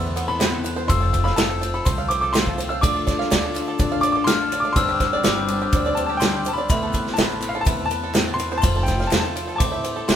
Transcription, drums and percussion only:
0.05 shaker soft
0.16 ride medium
0.16 shaker medium
0.40 snare loud
0.40 clap loud
0.40 ride medium
0.40 shaker medium
0.64 ride medium
0.64 shaker medium
0.77 shaker soft
0.89 kick loud
0.89 ride medium
0.89 shaker loud
1.01 shaker soft
1.13 kick medium
1.13 ride medium
1.13 shaker medium
1.26 snare soft
1.26 shaker soft
1.37 snare loud
1.37 clap loud
1.37 ride medium
1.37 shaker loud
1.50 shaker soft
1.62 ride medium
1.62 shaker medium
1.74 shaker soft
1.85 kick loud
1.85 ride medium
1.85 shaker loud
1.98 shaker soft
2.11 ride medium
2.11 shaker medium
2.22 shaker soft
2.34 snare loud
2.34 clap loud
2.34 ride medium
2.34 shaker loud
2.46 kick medium
2.46 shaker soft
2.58 ride medium
2.58 shaker medium
2.71 shaker soft
2.83 kick loud
2.83 ride medium
2.83 shaker loud
2.96 shaker soft
3.07 kick medium
3.07 snare soft
3.07 ride medium
3.07 shaker medium
3.20 snare soft
3.31 snare loud
3.31 clap loud
3.31 ride loud
3.31 shaker loud
3.54 clap medium
3.54 ride medium
3.54 shaker medium
3.67 shaker soft
3.79 kick loud
3.79 ride medium
3.79 shaker loud
3.92 shaker soft
4.03 ride medium
4.03 shaker medium
4.27 snare loud
4.27 clap medium
4.27 ride medium
4.27 shaker loud
4.52 ride medium
4.52 shaker medium
4.64 shaker soft
4.76 kick loud
4.76 ride loud
4.76 shaker loud
4.89 shaker soft
5.00 kick medium
5.00 snare soft
5.00 ride medium
5.00 shaker medium
5.24 snare loud
5.24 clap medium
5.24 ride medium
5.24 shaker loud
5.48 ride medium
5.48 shaker medium
5.61 shaker soft
5.72 kick loud
5.72 ride medium
5.72 shaker medium
5.85 shaker soft
5.97 ride medium
5.97 shaker medium
6.20 snare loud
6.20 clap loud
6.20 ride medium
6.20 shaker loud
6.45 ride medium
6.45 shaker medium
6.57 shaker soft
6.69 kick loud
6.69 ride medium
6.69 shaker loud
6.82 shaker soft
6.93 kick medium
6.93 ride medium
6.93 shaker medium
7.07 snare soft
7.17 snare loud
7.17 clap medium
7.17 ride medium
7.17 shaker loud
7.41 clap medium
7.41 ride medium
7.41 shaker medium
7.54 shaker soft
7.65 kick loud
7.65 ride loud
7.65 shaker loud
7.79 shaker soft
7.90 ride medium
7.90 shaker medium
8.14 snare loud
8.14 clap medium
8.14 ride medium
8.14 shaker loud
8.39 ride medium
8.39 shaker medium
8.51 shaker soft
8.62 kick loud
8.62 ride loud
8.62 shaker loud
8.74 shaker soft
8.86 kick medium
8.86 snare soft
8.86 ride medium
8.86 shaker medium
8.99 snare soft
8.99 shaker soft
9.11 snare loud
9.11 clap medium
9.11 ride medium
9.11 shaker loud
9.24 shaker soft
9.37 ride medium
9.49 shaker soft
9.60 kick loud
9.60 ride loud
9.60 shaker loud
9.73 shaker soft
9.84 ride medium
9.84 shaker medium
9.96 shaker soft
10.09 snare loud
10.09 clap medium
10.09 ride medium
10.09 shaker medium

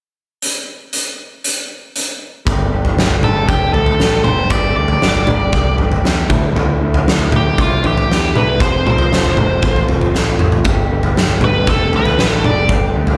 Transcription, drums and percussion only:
0.42 closed hi-hat soft
0.93 closed hi-hat soft
1.44 closed hi-hat soft
1.96 closed hi-hat soft
2.47 kick loud
2.47 floor tom medium
2.85 floor tom medium
2.99 snare medium
3.10 floor tom medium
3.23 floor tom medium
3.23 mid tom medium
3.49 kick medium
3.49 floor tom medium
3.74 floor tom medium
3.86 floor tom medium
4.00 snare medium
4.24 mid tom medium
4.50 kick loud
4.50 floor tom medium
4.88 floor tom medium
5.02 snare medium
5.15 floor tom medium
5.27 floor tom medium
5.27 mid tom medium
5.53 kick medium
5.53 floor tom medium
5.78 floor tom medium
5.92 floor tom medium
6.05 snare medium
6.30 kick medium
6.30 mid tom medium
6.56 floor tom medium
6.94 floor tom medium
7.08 snare medium
7.19 floor tom medium
7.32 floor tom medium
7.32 mid tom medium
7.58 kick medium
7.58 floor tom medium
7.84 floor tom medium
7.98 floor tom medium
8.11 snare medium
8.36 mid tom medium
8.60 kick loud
8.60 floor tom medium
8.87 mid tom medium
8.98 floor tom medium
9.13 snare medium
9.24 floor tom medium
9.37 floor tom medium
9.37 mid tom medium
9.62 kick medium
9.62 floor tom medium
9.76 floor tom medium
9.89 floor tom medium
10.01 floor tom medium
10.15 snare soft
10.39 mid tom medium
10.52 floor tom medium
10.65 kick loud
10.65 floor tom medium
11.03 floor tom medium
11.17 snare medium
11.28 floor tom medium
11.41 floor tom medium
11.41 mid tom medium
11.67 kick medium
11.67 floor tom medium
11.93 floor tom medium
12.05 floor tom medium
12.19 snare medium
12.44 mid tom medium
12.69 kick medium
12.69 floor tom medium
13.07 floor tom medium

